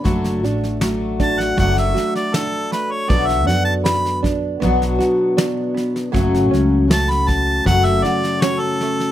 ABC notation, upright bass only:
X:1
M:4/4
L:1/8
Q:1/4=79
K:D
V:1 name="Upright bass" clef=bass
F,,, A,,,3 F,,, z3 | B,,, F,,3 B,,, z3 | F,,, C,,3 F,,, z3 |]